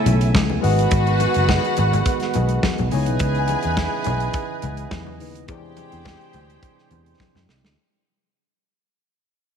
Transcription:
Already playing: C#3 A3 B3 C#4 E4 G#4 A4 B4 C#5 E5 G#5
0.06 B1, closed hi-hat, muted conga, low conga
0.21 closed hi-hat
0.35 C#2, kick, snare, high conga
0.50 high conga
0.61 G#1 D#3 G#3 B3 F#4 G#4 B4 D#5 F#5, open hi-hat
0.79 closed hi-hat
0.91 G#1, kick, closed hi-hat
1.07 closed hi-hat
1.20 closed hi-hat, muted conga
1.34 F#1, closed hi-hat
1.49 kick, snare, high conga
1.65 closed hi-hat
1.77 G#1, closed hi-hat, muted conga
1.93 closed hi-hat, low conga
2.06 kick, closed hi-hat
2.20 snare, closed hi-hat
2.34 B1 G#3 G#4 B4 D#5 F#5, closed hi-hat, muted conga, low conga
2.49 closed hi-hat
2.63 kick, snare, high conga
2.78 B1, closed hi-hat, high conga
2.91 C#2 C#3 E3 B3 D#4 E4 G#4 B4 C#5 D#5 G#5, open hi-hat
3.06 B1, closed hi-hat
3.19 C#2, kick, closed hi-hat
3.35 closed hi-hat
3.48 closed hi-hat, muted conga
3.63 E2, closed hi-hat
3.77 kick, snare, high conga
4.04 B1, closed hi-hat, muted conga, low conga
4.20 closed hi-hat
4.33 kick, closed hi-hat
4.62 C#2, closed hi-hat, muted conga, low conga
4.77 closed hi-hat
4.91 E2, kick, snare, high conga
5.07 high conga
5.20 D#2 C#3 B3 D#4 E4 B4, open hi-hat
5.35 closed hi-hat
5.47 E2 C3 E3 G#3 C4 D4 E4 G4 G#4 C5 D5 G5, kick, closed hi-hat
5.77 closed hi-hat, muted conga
5.92 E2, closed hi-hat
6.05 kick, snare, high conga
6.21 closed hi-hat
6.33 D2, closed hi-hat, muted conga
6.50 closed hi-hat
6.63 kick, closed hi-hat
6.78 snare
6.91 E2, closed hi-hat, muted conga, low conga
7.06 closed hi-hat
7.20 kick, snare, high conga
7.35 F#2, snare, high conga
7.49 C2, snare
7.64 D2, snare

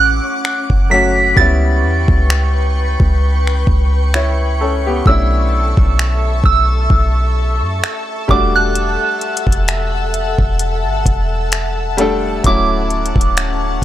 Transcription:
Already playing: A1 C#4 F#5 D6
0.00 F#6
0.45 finger snap
0.70 F#1, kick
0.90 F#3 A3 C#4 F#4 B6
1.36 C#2 G3 B3 C#4 E4 B4 G5 C#6 A6, kick
1.83 E2
2.08 C#2, kick
2.30 finger snap
3.00 C#2, kick
3.47 finger snap
3.67 C#2, kick
4.14 E4 C#5, finger snap
4.61 C#4 A4
4.86 B3 G4
5.05 B1 A3 C#4 D4 E4 A4 E5 A5 E6, kick
5.77 B1, kick
5.99 finger snap
6.44 B1 E6, kick
6.90 B1, kick
7.62 F#2
7.84 finger snap
8.28 E1 G3 A3 D4 F#4 E5 F#5 D6, kick
8.56 F#6
8.75 closed hi-hat
9.21 closed hi-hat
9.37 closed hi-hat
9.47 E1, kick
9.52 closed hi-hat
9.68 finger snap, closed hi-hat
10.14 closed hi-hat
10.39 E1, kick
10.59 closed hi-hat
10.85 G1
11.06 E1, kick, closed hi-hat
11.52 finger snap, closed hi-hat
11.97 G3 A3 D4 A4, closed hi-hat
12.43 D1 F#3 A3 C#4 E4 F#5 D6, kick, closed hi-hat
12.90 closed hi-hat
13.06 closed hi-hat
13.16 D1, kick
13.21 closed hi-hat
13.37 finger snap, closed hi-hat

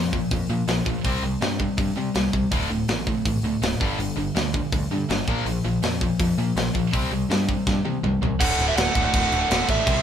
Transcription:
Already playing: F2 A#2 F3
0.13 A#2 F3, kick
0.31 F2 A#2 F3, kick, open hi-hat
0.50 A#2 F3
0.68 A#1 A#2 F3, snare, open hi-hat
0.85 A#1 A#2 F3, kick
1.04 C2 C3 G3 C4, kick, open hi-hat
1.23 C2 C3 G3
1.41 G2 C3 G3, snare, open hi-hat
1.59 C3 G3, kick
1.77 G2 C3 G3, kick, open hi-hat
1.96 C3 G3
2.15 C2 C3 G3, snare, open hi-hat
2.33 C2 C3 G3, kick
2.51 D1 D2 A2 D3, kick, open hi-hat
2.70 D1 D2 A2
2.88 A1 D2 A2, snare, open hi-hat
3.07 D2 A2, kick
3.25 A1 D2 A2, kick, open hi-hat
3.43 D2 A2
3.62 D1 D2 A2, snare, open hi-hat
3.80 G1 G2 D3 G3, kick
3.98 G1 G2 D3, open hi-hat
4.17 G1 G2 D3
4.35 D2 G2 D3, snare, open hi-hat
4.54 G2 D3, kick
4.72 D2 G2 D3, kick, open hi-hat
4.91 G2 D3
5.09 G1 G2 D3, snare, open hi-hat
5.28 A#1 A#2 F3 A#3, kick
5.46 A#1 A#2 F3, open hi-hat
5.64 A#1 A#2 F3
5.82 F2 A#2 F3, snare, open hi-hat
6.01 A#2 F3, kick
6.19 F2 A#2 F3, kick, open hi-hat
6.38 A#2 F3
6.56 A#1 A#2 F3, snare, open hi-hat
6.75 A#1 A#2 F3, kick
6.93 C2 C3 G3 C4, kick, open hi-hat
7.12 C2 C3 G3
7.29 G2 C3 G3, snare, open hi-hat
7.48 C3 G3, kick
7.67 G2 C3 G3, kick, snare
7.85 C3 G3, high tom
8.03 C2 C3 G3, mid tom
8.22 C2 C3 G3, floor tom
8.39 D1 D2 A2 D3 A3 F#4 F#5, kick, crash
8.59 D1, crash
8.69 E5
8.77 D1 F#5, snare, crash
8.95 D1 D2 A2 D3, kick, crash
9.05 F#5
9.14 D1, kick, crash
9.31 D1 D2 A2 D3 A3 F#4, crash
9.41 F#5
9.48 D1 D2 A2 D3 A3 F#4, snare, crash
9.69 A1 E5, kick, crash
9.85 C2 C3 G3 C4 E4 G4 C5, kick, crash

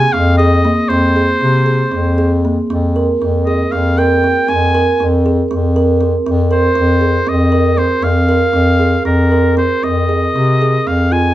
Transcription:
Already playing: G#5
0.13 F2 C4 F5
0.38 G#4 D#5
0.65 A#3
0.89 F2 C4 C5
1.16 G#4
1.41 C3 C4
1.66 G#4
1.91 F2 C4
2.18 G#4
2.45 A#3
2.70 F2 C4
2.96 A#4
3.21 F2 C4
3.46 G#4 D#5
3.71 F2 C4 F5
3.98 A#4 G5
4.24 C4
4.48 F2 C4 G#5
4.75 A#4
5.00 F2 C4
5.26 G#4
5.51 F2 C4
5.76 A#4
6.01 C4
6.26 F2 C4
6.51 A#4 C5
6.75 F2 C4
7.01 G#4
7.27 F2 C4 D#5
7.52 A#4
7.78 C4 C5
8.02 F2 C4 F5
8.29 A#4
8.53 F2 C4
8.79 G#4
9.05 F2 C4 A#4
9.31 A#4
9.57 C4 C5
9.84 F2 C4 D#5
10.09 G#4
10.35 C3 C4
10.62 G#4
10.87 F2 C4 F5
11.12 F4 G#5

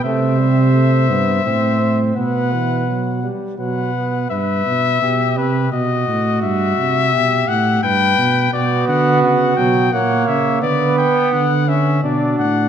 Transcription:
0.04 C3 A3 C5 E5
0.39 G3
0.74 A3
1.10 G2 B3
1.45 A2 C4 C5
1.81 C4
2.16 B2 B3 B4 F#5
2.52 E3
2.88 F#3
3.23 G3
3.59 B2 F#3 B4 F#5
3.95 B3
4.30 G2 B4 E5
4.66 B2
5.02 B2 G4
5.37 C3 B4
5.72 B2 F#4 D#5
6.07 A2
6.42 G2 E5
6.78 C3
7.13 B2 G4
7.48 A2 F#5
7.83 G2 B4 G5
8.18 B2
8.53 B2 B3 F#4 D5
8.88 D3 F#5
9.22 C#3 F#5
9.57 B2 F#3 G5
9.92 A#2 A#3 C#5 F#5
10.27 C#3 E5
10.62 D3 B3 B4 D5
10.98 G5
11.33 D3 F#5
11.68 C#4 E5
12.03 B2 D4 F#4 D5
12.39 A2 F#5

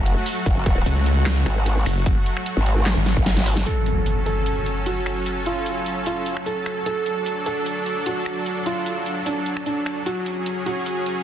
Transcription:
Already playing: F#1 F#3 A3 F#4
0.06 closed hi-hat
0.26 open hi-hat
0.46 F#1, kick, closed hi-hat
0.66 kick, closed hi-hat
0.86 C#2, closed hi-hat
1.06 closed hi-hat
1.26 snare, clap, closed hi-hat
1.46 G#1, finger snap, closed hi-hat
1.66 closed hi-hat
1.86 F#1, finger snap, open hi-hat
2.06 kick, closed hi-hat
2.26 closed hi-hat
2.37 finger snap
2.46 closed hi-hat
2.57 G#1
2.66 closed hi-hat
2.86 snare, clap, closed hi-hat
2.97 G#1
3.06 snare, closed hi-hat
3.17 G#1, kick
3.26 snare, closed hi-hat
3.37 snare
3.46 open hi-hat
3.57 snare
3.66 F#3 C#4 A4, closed hi-hat, impact
3.86 closed hi-hat
4.06 closed hi-hat
4.26 A4, closed hi-hat
4.46 closed hi-hat
4.66 closed hi-hat
4.86 F#4, closed hi-hat
5.06 finger snap, closed hi-hat
5.26 closed hi-hat
5.46 F4, closed hi-hat
5.66 closed hi-hat
5.86 closed hi-hat
6.06 F4, closed hi-hat
6.26 closed hi-hat
6.37 finger snap
6.46 A4, closed hi-hat
6.66 finger snap, closed hi-hat
6.86 D4 A4, closed hi-hat
7.06 closed hi-hat
7.26 closed hi-hat
7.46 A4, closed hi-hat
7.66 closed hi-hat
7.86 closed hi-hat
8.06 F#4, closed hi-hat
8.26 finger snap, closed hi-hat
8.46 closed hi-hat
8.66 F4, closed hi-hat
8.86 closed hi-hat
9.06 closed hi-hat
9.26 D4, closed hi-hat
9.46 closed hi-hat
9.57 finger snap
9.66 D4, closed hi-hat
9.86 finger snap, closed hi-hat
10.06 C#4 F#4 G#4, closed hi-hat
10.26 closed hi-hat
10.46 closed hi-hat
10.66 F#4, closed hi-hat
10.86 closed hi-hat
11.06 closed hi-hat

